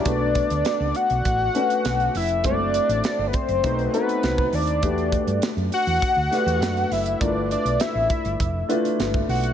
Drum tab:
HH |x-xxx-xxx-xxxxox|x-xxx-xxxxxxx-ox|xxxxxxxxx-xxxxox|x-xxx-xxx-xxx-ox|
SD |----o-------o---|----o-------o---|----o-----o-o-o-|----o-------o---|
BD |o-o-----o-------|o-----o-o----o--|o-o-----o-------|o-----o-o----o--|